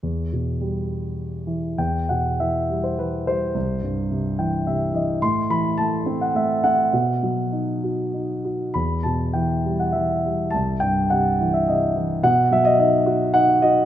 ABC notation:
X:1
M:3/4
L:1/16
Q:1/4=104
K:Em
V:1 name="Grand piano"
z12 | g2 f2 e3 c B2 c2- | c8- c2 z2 | c'2 b2 a3 f e2 f2- |
f8- f2 z2 | b2 a2 g3 f e2 z2 | a2 g2 f3 e ^d2 z2 | f2 e ^d d4 f2 d2 |]
V:2 name="Grand piano" clef=bass
E,,2 B,,2 G,6 E,2 | E,,2 B,,2 E,2 G,2 E,2 G,2 | C,,2 G,,2 C,2 [E,g]2 [C,e]2 [E,^d]2 | A,,2 E,2 A,2 C2 A,2 C2 |
B,,2 F,2 ^D2 F2 D2 F2 | E,,2 B,,2 E,2 G,2 E,2 G,2 | C,,2 G,,2 C,2 E,2 C,2 E,2 | B,,2 F,2 ^D2 F2 D2 F2 |]